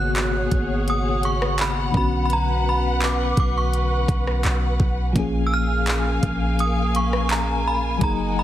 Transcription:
Already playing: G#1 B2 C#3 A#3 B3 F#4 G#4 C#5 F#5 F#6
0.16 clap, closed hi-hat
0.52 G#1, kick, closed hi-hat
0.88 D#6, closed hi-hat
1.23 C#6, closed hi-hat
1.42 cross-stick
1.58 B5, clap, closed hi-hat
1.91 B1 D3 B3 B4, kick
1.96 C#4 F#4 B5
2.25 B5
2.30 A#5, closed hi-hat
2.69 B5
3.01 D6, clap, closed hi-hat
3.37 B1 D6, kick, closed hi-hat
3.58 C#6
3.73 closed hi-hat
4.08 B1, kick, closed hi-hat
4.27 cross-stick
4.44 B1, clap, closed hi-hat
4.80 B1, kick
5.13 A#1 F3 A#3 F5 G#5, kick, closed hi-hat
5.17 C#4 G#4
5.47 E6
5.54 F6
5.87 clap, closed hi-hat
6.23 A#1, kick, closed hi-hat
6.59 D#6, closed hi-hat
6.95 C#6, closed hi-hat
7.13 cross-stick
7.30 A#5, clap, closed hi-hat
7.67 B5
7.98 F#1 F#3 A#3 D#5 F#5, kick, closed hi-hat
8.03 D#4 G#4 A#5
8.39 B5

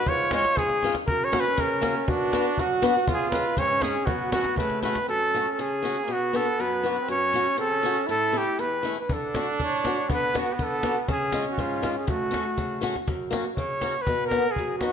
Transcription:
0.06 G#2 F4 C#5, cajon bass
0.31 G#3 C#4 F4 C#5, cajon slap
0.45 cajon slap
0.57 G#2 G#4, cajon bass, cajon slap
0.69 cajon slap
0.83 G#3 C#4 F4, cajon slap
0.95 cajon slap
1.07 F#2 C#4 A#4, cajon bass
1.24 C#5
1.32 A#3 C#4 F#4, cajon slap
1.40 B4
1.57 C#3 A#4, cajon bass, cajon slap
1.81 A#3 C#4 F#4, cajon slap
2.08 B2 D4 F#4, cajon bass
2.33 B3 D4 F#4, cajon slap
2.57 F#2 F#4, cajon bass, cajon slap
2.82 B3 D4 F#4, cajon slap
3.07 C#3 F4, cajon bass
3.13 G#4
3.30 G#3 C#4 B4, cajon slap
3.35 F4
3.57 G#2 C#4 C#5, cajon bass
3.82 G#3 C#4 F4 G#4, cajon slap
4.05 B3 F#4, cajon bass
4.10 F#2
4.32 A3 C#4 F#4, cajon slap
4.45 cajon slap
4.56 C#3 A3 B4, cajon bass, cajon slap
4.70 cajon slap
4.82 A3 C#4 F#4 B4, cajon slap
4.95 cajon slap
5.02 C4
5.09 F#2 C#4 A4
5.34 A3 C#4 F#4
5.52 A4
5.59 C#3 G#4
5.82 A3 C#4 F#4
6.04 B2 A#3
6.10 B3 F#4
6.33 B3 D4 F#4 A4
6.60 F#2 B4
6.83 B3 D4 F#4
7.02 C4
7.08 F#2 C#4 C#5
7.33 A3 C#4 F#4
7.58 C#3 C#4 A4
7.83 A3 C#4 F#4
8.07 A2 E4
8.11 A4
8.32 A3 C#4 E4
8.37 G4
8.59 E2 B4
8.83 A3 C#4 E4
9.01 B4
9.09 D3 D4, cajon bass
9.13 A4
9.34 A3 D4 F#4, cajon slap
9.60 A2 C#5, cajon bass
9.84 A3 D4 F#4, cajon slap
10.09 D3 B3, cajon bass
10.14 B4
10.34 B3 D4 F#4, cajon slap
10.38 F#4
10.53 B4
10.59 D3, cajon bass, cajon slap
10.63 A4
10.83 B3 D4 F#4, cajon slap
11.08 C#3 C#4 G#4, cajon bass
11.32 G#3 C#4 F4, cajon slap
11.51 F#4
11.58 G#2 F4, cajon bass
11.82 G#3 C#4 F4, cajon slap
11.97 G#4
12.07 F#2 A3 F#4, cajon bass
12.31 A3 C#4 F#4, cajon slap
12.57 C#3, cajon bass, cajon slap
12.81 A3 C#4 F#4, cajon slap
12.96 cajon slap
13.08 F#2, cajon bass
13.31 A#3 C#4 F#4, cajon slap
13.57 C#3 C#5, cajon bass
13.81 A#3 C#4 F#4, cajon slap
14.02 B4
14.07 B2, cajon bass
14.27 A#4
14.31 B3 D#4 F#4, cajon slap
14.51 G#4
14.56 F#2, cajon bass
14.78 B3 F#4, cajon slap
14.82 D#4 F#4

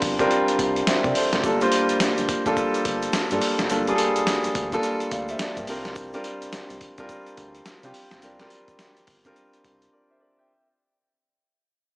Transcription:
Already playing: G3 C4 D4 F4 A#4
0.02 G1, kick, open hi-hat, tambourine
0.19 G3 C4 D4 F4 A#4, kick, closed hi-hat
0.31 closed hi-hat
0.48 closed hi-hat
0.59 C2, kick, closed hi-hat, tambourine
0.76 closed hi-hat
0.87 C5 E5, snare, closed hi-hat, tambourine
1.04 C3 A#4 D5, kick, closed hi-hat
1.15 A4 C5, open hi-hat, tambourine
1.33 F1 G4 A#4, snare, closed hi-hat
1.44 G1 G3 A#3 D4 F4 A4, kick, closed hi-hat, tambourine, shaker
1.61 G3 A#3 D4 F4 C5, closed hi-hat, shaker
1.72 closed hi-hat, tambourine, shaker
1.89 G1, closed hi-hat, shaker
2.00 G1, snare, closed hi-hat, tambourine, shaker
2.17 G1, closed hi-hat, shaker
2.29 kick, closed hi-hat, tambourine
2.46 A#1 G3 A#3 D4 F4 A4, kick, closed hi-hat, shaker
2.57 kick, closed hi-hat, shaker
2.74 closed hi-hat, shaker
2.85 G1, kick, closed hi-hat, tambourine
3.02 closed hi-hat, shaker
3.13 snare, closed hi-hat, tambourine, shaker
3.30 G2 G3 A#3 D4 F4 A4, closed hi-hat, shaker
3.41 open hi-hat, tambourine, shaker
3.59 F1, snare, closed hi-hat, shaker
3.70 G1 G3 A#3 D4 F4 A4, closed hi-hat, tambourine, shaker
3.87 G3 A#3 D4 F4 G#4, closed hi-hat, shaker
3.95 A4, closed hi-hat, tambourine, shaker
4.16 D2, closed hi-hat, shaker
4.27 snare, closed hi-hat, tambourine, shaker
4.44 D2, closed hi-hat, shaker
4.55 D2, kick, closed hi-hat, tambourine
4.72 G3 A#3 D4 F4 A4, kick, closed hi-hat, shaker
4.83 closed hi-hat, shaker
5.00 closed hi-hat, shaker
5.11 D2 D5 F5, kick, closed hi-hat, tambourine
5.28 C5 E5, closed hi-hat, shaker
5.39 A#4 D5, snare, closed hi-hat, tambourine, shaker
5.56 G2 G4 A#4, kick, closed hi-hat, shaker
5.67 C2 G3 C4 D4 F4 A#4, open hi-hat, tambourine, shaker
5.85 snare, closed hi-hat, shaker
5.95 kick, closed hi-hat, tambourine, shaker
6.13 G3 C4 D4 F4 A#4, closed hi-hat, shaker
6.24 closed hi-hat, tambourine, shaker
6.42 C2, closed hi-hat, shaker
6.52 C2, snare, closed hi-hat, tambourine, shaker
6.69 C2, closed hi-hat, shaker
6.81 kick, closed hi-hat, tambourine
6.97 C2 G3 C4 D4 F4 A#4, kick, closed hi-hat, shaker
7.09 kick, closed hi-hat, shaker
7.26 closed hi-hat, shaker
7.37 D2, kick, closed hi-hat, tambourine
7.55 closed hi-hat, shaker
7.65 snare, closed hi-hat, tambourine, shaker
7.83 C3 G3 C4 D4 F4 G4, closed hi-hat, shaker
7.94 open hi-hat, tambourine, shaker
8.11 A#1, snare, closed hi-hat, shaker
8.22 C2 G3 C4 D4 F4 A#4, closed hi-hat, tambourine, shaker
8.39 G3 C4 D4 F4 A#4, snare, closed hi-hat, shaker
8.50 closed hi-hat, tambourine, shaker
8.68 G1, kick, closed hi-hat, shaker
8.79 snare, closed hi-hat, tambourine, shaker
8.97 G1, closed hi-hat, shaker
9.07 G1, kick, open hi-hat, tambourine, shaker
9.24 G3 C4 D4 F4 A#4, kick, closed hi-hat, shaker
9.36 closed hi-hat, shaker
9.53 closed hi-hat, shaker
9.64 C2, kick, closed hi-hat, tambourine, shaker
9.82 closed hi-hat, shaker
9.93 A#4 D5
10.10 C5 E5
10.21 A#4 D5
10.39 E5 G5

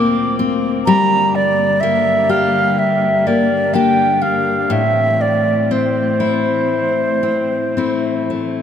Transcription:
Already playing: D2 A#2 A#3 C4 F4 D6
0.39 C4
0.86 G2 D3 G3 A#3 A#5
1.35 D5
1.80 A#3 E5
2.29 G4 F5
2.79 E5
3.27 A#3 D5
3.73 A#3 D4 G4 G5
4.21 D4 F5
4.70 A2 E3 C4 E5
5.21 D5
5.71 C4 C5
6.20 E4
7.23 C4
7.77 A3 C4 E4
8.30 A3

